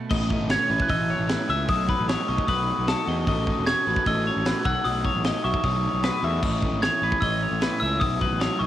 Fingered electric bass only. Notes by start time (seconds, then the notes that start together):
0.11 A1
0.40 G#1
0.70 A1
0.90 A1
1.19 A1
1.49 C#2
1.68 B1
1.99 A1
2.29 B1
2.48 B1
2.78 B1
3.07 E2
3.27 A1
3.58 E1
3.87 A1
4.06 A1
4.36 A1
4.65 B1
4.85 B1
5.15 A1
5.44 B1
5.64 B1
5.93 B1
6.23 E2
6.43 A1
6.72 G#1
7.02 A1
7.22 A1
7.51 A1
7.82 C#2
8.01 B1
8.31 A1
8.60 B1